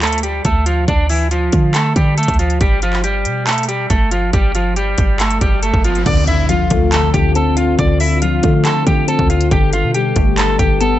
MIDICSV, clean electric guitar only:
0, 0, Header, 1, 2, 480
1, 0, Start_track
1, 0, Tempo, 431655
1, 980, Time_signature, 4, 2, 24, 8
1, 12223, End_track
2, 0, Start_track
2, 0, Title_t, "Clean electric guitar"
2, 0, Program_c, 0, 27
2, 22, Note_on_c, 0, 69, 96
2, 31, Note_on_c, 0, 57, 67
2, 228, Note_off_c, 0, 69, 0
2, 233, Note_off_c, 0, 57, 0
2, 256, Note_on_c, 0, 67, 78
2, 265, Note_on_c, 0, 55, 65
2, 465, Note_off_c, 0, 67, 0
2, 469, Note_off_c, 0, 55, 0
2, 505, Note_on_c, 0, 69, 80
2, 513, Note_on_c, 0, 57, 63
2, 709, Note_off_c, 0, 69, 0
2, 714, Note_off_c, 0, 57, 0
2, 734, Note_on_c, 0, 65, 77
2, 743, Note_on_c, 0, 53, 64
2, 944, Note_off_c, 0, 65, 0
2, 949, Note_off_c, 0, 53, 0
2, 978, Note_on_c, 0, 62, 93
2, 987, Note_on_c, 0, 74, 70
2, 1186, Note_off_c, 0, 62, 0
2, 1191, Note_off_c, 0, 74, 0
2, 1220, Note_on_c, 0, 64, 86
2, 1229, Note_on_c, 0, 52, 65
2, 1427, Note_off_c, 0, 64, 0
2, 1432, Note_off_c, 0, 52, 0
2, 1460, Note_on_c, 0, 65, 84
2, 1469, Note_on_c, 0, 53, 68
2, 1911, Note_off_c, 0, 65, 0
2, 1916, Note_off_c, 0, 53, 0
2, 1938, Note_on_c, 0, 69, 94
2, 1947, Note_on_c, 0, 57, 71
2, 2146, Note_off_c, 0, 69, 0
2, 2151, Note_off_c, 0, 57, 0
2, 2181, Note_on_c, 0, 67, 80
2, 2191, Note_on_c, 0, 55, 62
2, 2388, Note_off_c, 0, 67, 0
2, 2393, Note_off_c, 0, 55, 0
2, 2421, Note_on_c, 0, 69, 84
2, 2430, Note_on_c, 0, 57, 60
2, 2627, Note_off_c, 0, 69, 0
2, 2632, Note_off_c, 0, 57, 0
2, 2660, Note_on_c, 0, 65, 72
2, 2668, Note_on_c, 0, 53, 57
2, 2867, Note_off_c, 0, 65, 0
2, 2872, Note_off_c, 0, 53, 0
2, 2903, Note_on_c, 0, 67, 86
2, 2912, Note_on_c, 0, 55, 75
2, 3109, Note_off_c, 0, 67, 0
2, 3114, Note_off_c, 0, 55, 0
2, 3145, Note_on_c, 0, 65, 90
2, 3153, Note_on_c, 0, 53, 69
2, 3349, Note_off_c, 0, 65, 0
2, 3354, Note_off_c, 0, 53, 0
2, 3379, Note_on_c, 0, 67, 77
2, 3388, Note_on_c, 0, 55, 69
2, 3830, Note_off_c, 0, 67, 0
2, 3835, Note_off_c, 0, 55, 0
2, 3858, Note_on_c, 0, 69, 88
2, 3866, Note_on_c, 0, 57, 68
2, 4066, Note_off_c, 0, 69, 0
2, 4070, Note_off_c, 0, 57, 0
2, 4096, Note_on_c, 0, 67, 78
2, 4105, Note_on_c, 0, 55, 64
2, 4305, Note_off_c, 0, 67, 0
2, 4310, Note_off_c, 0, 55, 0
2, 4336, Note_on_c, 0, 69, 85
2, 4345, Note_on_c, 0, 57, 61
2, 4545, Note_off_c, 0, 69, 0
2, 4549, Note_off_c, 0, 57, 0
2, 4575, Note_on_c, 0, 65, 73
2, 4584, Note_on_c, 0, 53, 58
2, 4784, Note_off_c, 0, 65, 0
2, 4789, Note_off_c, 0, 53, 0
2, 4821, Note_on_c, 0, 67, 94
2, 4829, Note_on_c, 0, 55, 70
2, 5027, Note_off_c, 0, 67, 0
2, 5032, Note_off_c, 0, 55, 0
2, 5060, Note_on_c, 0, 65, 82
2, 5069, Note_on_c, 0, 53, 63
2, 5267, Note_off_c, 0, 65, 0
2, 5272, Note_off_c, 0, 53, 0
2, 5299, Note_on_c, 0, 67, 86
2, 5307, Note_on_c, 0, 55, 66
2, 5750, Note_off_c, 0, 67, 0
2, 5755, Note_off_c, 0, 55, 0
2, 5782, Note_on_c, 0, 69, 92
2, 5791, Note_on_c, 0, 57, 74
2, 5988, Note_off_c, 0, 69, 0
2, 5993, Note_off_c, 0, 57, 0
2, 6020, Note_on_c, 0, 67, 83
2, 6029, Note_on_c, 0, 55, 61
2, 6227, Note_off_c, 0, 67, 0
2, 6232, Note_off_c, 0, 55, 0
2, 6258, Note_on_c, 0, 69, 78
2, 6267, Note_on_c, 0, 57, 61
2, 6466, Note_off_c, 0, 69, 0
2, 6471, Note_off_c, 0, 57, 0
2, 6502, Note_on_c, 0, 65, 80
2, 6511, Note_on_c, 0, 53, 61
2, 6708, Note_off_c, 0, 65, 0
2, 6713, Note_off_c, 0, 53, 0
2, 6743, Note_on_c, 0, 74, 96
2, 6752, Note_on_c, 0, 86, 68
2, 6948, Note_off_c, 0, 74, 0
2, 6954, Note_off_c, 0, 86, 0
2, 6979, Note_on_c, 0, 76, 81
2, 6988, Note_on_c, 0, 64, 66
2, 7187, Note_off_c, 0, 76, 0
2, 7192, Note_off_c, 0, 64, 0
2, 7217, Note_on_c, 0, 77, 89
2, 7226, Note_on_c, 0, 65, 66
2, 7669, Note_off_c, 0, 77, 0
2, 7674, Note_off_c, 0, 65, 0
2, 7701, Note_on_c, 0, 81, 91
2, 7710, Note_on_c, 0, 69, 71
2, 7908, Note_off_c, 0, 81, 0
2, 7913, Note_off_c, 0, 69, 0
2, 7935, Note_on_c, 0, 79, 82
2, 7944, Note_on_c, 0, 67, 67
2, 8144, Note_off_c, 0, 79, 0
2, 8149, Note_off_c, 0, 67, 0
2, 8183, Note_on_c, 0, 81, 83
2, 8192, Note_on_c, 0, 69, 68
2, 8388, Note_off_c, 0, 81, 0
2, 8394, Note_off_c, 0, 69, 0
2, 8415, Note_on_c, 0, 77, 79
2, 8424, Note_on_c, 0, 65, 64
2, 8624, Note_off_c, 0, 77, 0
2, 8629, Note_off_c, 0, 65, 0
2, 8659, Note_on_c, 0, 74, 94
2, 8668, Note_on_c, 0, 86, 74
2, 8866, Note_off_c, 0, 74, 0
2, 8871, Note_off_c, 0, 86, 0
2, 8900, Note_on_c, 0, 76, 89
2, 8909, Note_on_c, 0, 64, 67
2, 9107, Note_off_c, 0, 76, 0
2, 9112, Note_off_c, 0, 64, 0
2, 9140, Note_on_c, 0, 77, 86
2, 9149, Note_on_c, 0, 65, 67
2, 9591, Note_off_c, 0, 77, 0
2, 9596, Note_off_c, 0, 65, 0
2, 9619, Note_on_c, 0, 81, 95
2, 9628, Note_on_c, 0, 69, 68
2, 9826, Note_off_c, 0, 81, 0
2, 9831, Note_off_c, 0, 69, 0
2, 9863, Note_on_c, 0, 79, 84
2, 9871, Note_on_c, 0, 67, 64
2, 10068, Note_off_c, 0, 79, 0
2, 10073, Note_off_c, 0, 67, 0
2, 10101, Note_on_c, 0, 81, 82
2, 10110, Note_on_c, 0, 69, 61
2, 10307, Note_off_c, 0, 81, 0
2, 10313, Note_off_c, 0, 69, 0
2, 10340, Note_on_c, 0, 77, 74
2, 10349, Note_on_c, 0, 65, 61
2, 10547, Note_off_c, 0, 77, 0
2, 10552, Note_off_c, 0, 65, 0
2, 10585, Note_on_c, 0, 79, 90
2, 10593, Note_on_c, 0, 67, 75
2, 10790, Note_off_c, 0, 79, 0
2, 10794, Note_off_c, 0, 67, 0
2, 10824, Note_on_c, 0, 77, 93
2, 10832, Note_on_c, 0, 65, 69
2, 11029, Note_off_c, 0, 77, 0
2, 11034, Note_off_c, 0, 65, 0
2, 11060, Note_on_c, 0, 79, 83
2, 11069, Note_on_c, 0, 67, 68
2, 11511, Note_off_c, 0, 79, 0
2, 11515, Note_off_c, 0, 67, 0
2, 11538, Note_on_c, 0, 81, 89
2, 11547, Note_on_c, 0, 69, 73
2, 11746, Note_off_c, 0, 81, 0
2, 11751, Note_off_c, 0, 69, 0
2, 11777, Note_on_c, 0, 79, 78
2, 11785, Note_on_c, 0, 67, 64
2, 11985, Note_off_c, 0, 79, 0
2, 11990, Note_off_c, 0, 67, 0
2, 12016, Note_on_c, 0, 81, 89
2, 12025, Note_on_c, 0, 69, 65
2, 12223, Note_off_c, 0, 69, 0
2, 12223, Note_off_c, 0, 81, 0
2, 12223, End_track
0, 0, End_of_file